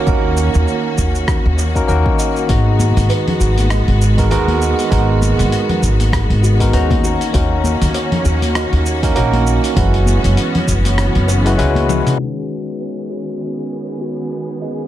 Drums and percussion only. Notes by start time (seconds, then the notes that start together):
0.07 kick, shaker
0.37 shaker
0.54 shaker
0.68 shaker
0.98 kick, shaker
1.15 shaker
1.28 kick, cross-stick, shaker
1.58 shaker
1.75 kick, shaker
1.88 shaker
2.06 kick
2.19 shaker
2.36 shaker
2.49 kick, open hi-hat, shaker
2.79 high conga, shaker
2.97 open hi-hat, shaker
3.10 open hi-hat, shaker
3.28 open hi-hat, low conga
3.41 shaker
3.58 open hi-hat, high conga, shaker
3.70 cross-stick, open hi-hat, shaker
3.88 open hi-hat
4.01 shaker
4.18 kick, open hi-hat, shaker
4.31 open hi-hat, shaker
4.48 open hi-hat, high conga
4.62 shaker
4.79 open hi-hat, shaker
4.92 kick, open hi-hat, shaker
5.22 high conga, shaker
5.39 open hi-hat, shaker
5.52 open hi-hat, shaker
5.69 open hi-hat, low conga
5.82 kick, shaker
6.00 open hi-hat, high conga, shaker
6.13 kick, cross-stick, open hi-hat, shaker
6.30 open hi-hat
6.44 shaker
6.60 kick, open hi-hat, shaker
6.73 open hi-hat, shaker
6.90 kick, open hi-hat, high conga
7.04 shaker
7.21 open hi-hat, shaker
7.34 kick, open hi-hat, shaker
7.64 high conga, shaker
7.82 open hi-hat, shaker
7.94 open hi-hat, shaker
8.12 open hi-hat, low conga
8.25 shaker
8.42 open hi-hat, high conga, shaker
8.55 cross-stick, open hi-hat, shaker
8.73 open hi-hat
8.86 shaker
9.03 kick, open hi-hat, shaker
9.16 open hi-hat, shaker
9.33 open hi-hat, high conga
9.47 shaker
9.64 open hi-hat, shaker
9.76 kick, open hi-hat, shaker
9.94 open hi-hat
10.06 high conga, shaker
10.24 open hi-hat, shaker
10.37 open hi-hat, shaker
10.55 open hi-hat, low conga
10.68 kick, shaker
10.85 open hi-hat, high conga, shaker
10.98 cross-stick, open hi-hat, shaker
11.15 open hi-hat
11.29 shaker
11.46 open hi-hat, shaker
11.59 open hi-hat, shaker
11.75 open hi-hat, high conga
11.89 high tom, shaker
12.07 open hi-hat, mid tom, shaker
12.50 shaker
12.67 open hi-hat
12.80 open hi-hat
12.97 open hi-hat
13.10 shaker
13.27 open hi-hat, shaker
13.41 open hi-hat, shaker
13.58 open hi-hat
13.71 shaker
13.89 open hi-hat, shaker
14.01 open hi-hat
14.18 open hi-hat
14.31 shaker
14.48 open hi-hat, shaker
14.61 open hi-hat